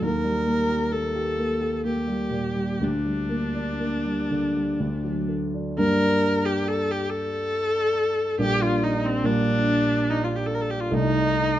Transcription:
0.02 2.77 D#2 medium
0.02 0.94 A#4 medium
0.24 0.60 G3 soft
0.46 0.83 A#3 soft
0.69 1.06 G4 soft
0.92 1.29 A#3 soft
0.92 1.85 A4 medium
1.16 1.53 G4 soft
1.38 1.76 A#3 soft
1.61 1.99 G4 soft
1.85 2.23 A#3 soft
1.85 2.86 G4 medium
2.07 2.47 G3 soft
2.31 2.71 A#2 soft
2.55 2.81 G3 soft
2.81 4.77 D2 soft
2.81 5.32 D4 medium
3.05 3.46 G3 soft
3.29 3.71 A#3 soft
3.55 3.96 D4 soft
3.80 4.21 A#3 soft
4.06 4.46 G3 soft
4.31 4.71 D3 soft
4.55 4.81 G3 soft
4.80 5.75 D2 soft
5.04 5.45 F#3 soft
5.29 5.68 A3 soft
5.54 5.76 D4 soft
5.77 8.36 G2 medium
5.77 8.36 G3 soft
5.77 8.36 A#3 soft
5.77 8.36 D4 soft
5.77 6.47 A#4 medium
6.45 6.69 G4 medium
6.68 6.92 A4 medium
6.91 7.11 G4 medium
7.09 8.39 A4 medium
8.38 9.21 A#1 medium
8.38 9.21 G3 soft
8.38 9.21 A#3 soft
8.38 9.21 D4 soft
8.38 8.64 G4 loud
8.62 8.85 F4 medium
8.84 9.07 D#4 medium
9.05 9.27 C4 medium
9.24 10.88 A#1 medium
9.24 10.88 G3 soft
9.24 10.88 A#3 medium
9.24 10.88 D4 medium
9.24 10.11 D4 medium
10.09 10.25 D#4 medium
10.24 10.37 F4 medium
10.36 10.47 G4 medium
10.46 10.56 A4 medium
10.54 10.62 A#4 medium
10.61 10.72 A4 medium
10.70 10.82 G4 medium
10.80 10.95 F4 medium
10.91 11.60 C2 medium
10.91 11.60 A3 soft
10.91 11.60 D#4 soft
10.91 11.60 D#4 loud

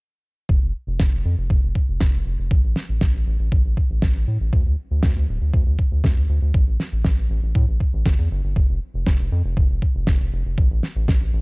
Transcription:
0.49 0.60 F1 loud
0.49 kick loud
0.62 0.73 F1 medium
0.87 0.98 F1 medium
1.00 1.10 F1 loud
1.00 kick loud
1.00 snare loud
1.13 1.23 F1 medium
1.25 1.36 F2 medium
1.38 1.48 F1 medium
1.50 1.61 F1 loud
1.50 kick loud
1.63 1.73 F1 medium
1.75 kick medium
1.88 1.99 F1 medium
2.00 2.11 F1 loud
2.00 kick loud
2.00 snare loud
2.13 2.24 F1 medium
2.26 2.36 F1 medium
2.38 2.49 F1 medium
2.51 2.62 A1 loud
2.51 kick loud
2.64 2.74 A1 medium
2.76 snare medium
2.89 2.99 A1 medium
3.01 3.12 A1 loud
3.01 kick loud
3.01 snare loud
3.14 3.25 A1 medium
3.27 3.37 A1 medium
3.39 3.50 A1 medium
3.52 3.62 A1 loud
3.52 kick loud
3.65 3.75 A1 medium
3.77 kick medium
3.90 4.00 A1 medium
4.02 4.13 A1 loud
4.02 kick loud
4.02 snare loud
4.15 4.26 A1 medium
4.28 4.38 A2 medium
4.40 4.51 A1 medium
4.53 4.63 D2 loud
4.53 kick loud
4.66 4.76 D2 medium
4.91 5.01 D2 medium
5.03 5.14 D2 loud
5.03 kick loud
5.03 snare loud
5.16 5.26 D2 medium
5.29 5.39 D1 medium
5.41 5.52 D2 medium
5.54 5.64 D2 loud
5.54 kick loud
5.66 5.77 D2 medium
5.79 kick medium
5.92 6.02 D2 medium
6.04 6.15 D2 loud
6.04 kick loud
6.04 snare loud
6.17 6.27 D2 medium
6.29 6.40 D2 medium
6.42 6.52 D2 medium
6.54 6.65 A1 loud
6.54 kick loud
6.67 6.78 A1 medium
6.80 snare medium
6.92 7.03 A1 medium
7.05 7.15 A1 loud
7.05 kick loud
7.05 snare loud
7.18 7.28 A1 medium
7.30 7.41 A1 medium
7.43 7.53 A1 medium
7.55 7.66 A2 loud
7.55 kick loud
7.68 7.78 A1 medium
7.80 kick medium
7.93 8.04 A1 medium
8.06 8.16 G1 loud
8.06 kick loud
8.06 snare loud
8.19 8.29 E2 medium
8.31 8.42 G1 medium
8.44 8.54 G1 medium
8.56 8.67 F1 loud
8.56 kick loud
8.69 8.79 F1 medium
8.94 9.05 F1 medium
9.07 9.17 F1 loud
9.07 kick loud
9.07 snare loud
9.19 9.30 F1 medium
9.32 9.42 F2 medium
9.44 9.55 F1 medium
9.57 9.67 F1 loud
9.57 kick loud
9.70 9.80 F1 medium
9.82 kick medium
9.95 10.05 F1 medium
10.07 10.18 F1 loud
10.07 kick loud
10.07 snare loud
10.20 10.31 F1 medium
10.33 10.43 F1 medium
10.45 10.56 F1 medium
10.58 10.68 A1 medium
10.58 kick loud
10.70 10.81 A1 medium
10.83 snare medium
10.96 11.06 A1 medium
11.08 11.19 A1 loud
11.08 kick loud
11.08 snare loud
11.21 11.31 A1 medium
11.33 11.41 A1 medium

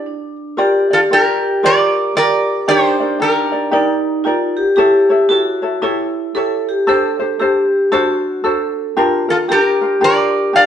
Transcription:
0.00 0.58 D4 soft
0.00 0.36 G4 medium
0.00 0.57 G4 soft
0.00 0.36 B4 medium
0.00 0.58 D5 medium
0.06 0.55 D4 medium
0.57 0.91 F4 medium
0.57 0.91 G4 medium
0.57 2.64 G4 loud
0.57 0.90 A#4 medium
0.57 0.89 D5 medium
0.91 1.10 F4 soft
0.91 0.99 F4 medium
0.91 1.10 G4 soft
0.91 0.98 A4 medium
0.91 1.11 D5 soft
1.10 1.62 F4 medium
1.10 1.64 G4 medium
1.10 1.61 G4 medium
1.10 1.63 A#4 medium
1.10 1.66 A#4 medium
1.10 1.64 D5 medium
1.63 2.15 F4 medium
1.63 2.16 G4 medium
1.63 2.15 A#4 medium
1.63 2.14 A#4 medium
1.63 2.17 D5 medium
1.63 2.15 D5 loud
2.15 2.68 F4 medium
2.15 2.67 G4 medium
2.15 2.68 A#4 medium
2.15 2.66 A#4 medium
2.15 2.68 D5 loud
2.15 2.69 D5 medium
2.68 3.76 D4 medium
2.68 3.01 D#4 medium
2.68 3.00 G4 medium
2.68 3.18 G4 medium
2.68 3.00 A#4 medium
2.68 3.21 C5 loud
2.68 2.99 D5 medium
3.00 3.19 D#4 soft
3.00 3.20 A#4 soft
3.00 3.20 D5 medium
3.19 3.53 D#4 medium
3.19 3.53 G4 medium
3.19 4.55 G4 medium
3.19 3.52 A#4 medium
3.19 4.55 A#4 medium
3.19 3.51 D5 medium
3.52 3.71 D#4 soft
3.52 3.71 A#4 soft
3.52 3.72 D5 soft
3.71 4.24 D#4 medium
3.71 4.27 D#4 medium
3.71 4.24 G4 medium
3.71 4.25 A#4 medium
3.71 4.25 D5 medium
4.24 4.76 D#4 medium
4.24 4.58 F4 medium
4.24 4.77 G4 medium
4.24 4.77 A#4 medium
4.24 4.77 D5 medium
4.57 4.75 G4 medium
4.76 5.10 E4 medium
4.76 5.31 G4 loud
4.76 5.10 G4 medium
4.76 5.09 A4 loud
4.76 5.08 C#5 loud
5.09 5.28 E4 soft
5.09 5.29 A4 medium
5.09 5.30 C#5 medium
5.29 5.63 E4 medium
5.29 5.78 F#4 loud
5.29 5.62 G4 medium
5.29 5.62 A4 medium
5.29 5.61 C#5 medium
5.62 5.81 E4 soft
5.62 5.81 A4 medium
5.62 5.82 C#5 medium
5.82 6.34 E4 loud
5.82 6.31 E4 medium
5.82 6.34 G4 medium
5.82 6.36 A4 medium
5.82 6.35 C#5 loud
6.35 6.88 E4 medium
6.35 6.87 G4 medium
6.35 6.69 A4 loud
6.35 6.87 A4 medium
6.35 6.87 C#5 medium
6.69 6.89 G4 medium
6.87 7.20 D4 medium
6.87 7.19 G4 loud
6.87 7.20 A4 medium
6.87 7.37 A4 loud
6.87 7.18 C5 loud
7.20 7.39 D4 soft
7.20 7.40 G4 medium
7.20 7.40 C5 medium
7.40 7.91 D4 medium
7.40 7.88 G4 loud
7.40 7.92 G4 medium
7.40 7.90 A4 medium
7.40 7.92 C5 medium
7.92 8.44 D4 medium
7.92 8.46 F#4 loud
7.92 8.44 F#4 loud
7.92 8.43 A4 medium
7.92 8.45 C5 loud
8.44 8.97 D4 medium
8.44 8.97 F#4 medium
8.44 8.96 A4 medium
8.44 8.93 A4 medium
8.44 8.98 C5 medium
8.97 9.29 D4 loud
8.97 9.46 F4 loud
8.97 9.29 F4 medium
8.97 9.29 G4 medium
8.97 9.27 A#4 loud
9.29 9.48 D4 soft
9.29 9.49 F4 soft
9.29 9.37 F4 medium
9.29 9.36 A4 medium
9.29 9.49 A#4 medium
9.48 9.82 D4 medium
9.48 9.81 F4 medium
9.48 9.81 G4 medium
9.48 10.66 G4 medium
9.48 9.80 A#4 medium
9.48 9.99 A#4 medium
9.53 10.00 G4 medium
9.81 10.00 D4 soft
9.81 10.01 F4 soft
9.81 10.01 A#4 medium
10.01 10.53 D4 medium
10.01 10.53 F4 medium
10.01 10.53 G4 medium
10.01 10.54 A#4 medium
10.01 10.52 A#4 medium
10.01 10.55 D5 loud
10.53 10.66 D4 medium
10.53 10.66 F4 medium
10.53 10.66 G4 medium
10.53 10.66 A#4 medium
10.53 10.66 D5 medium
10.53 10.66 F5 medium

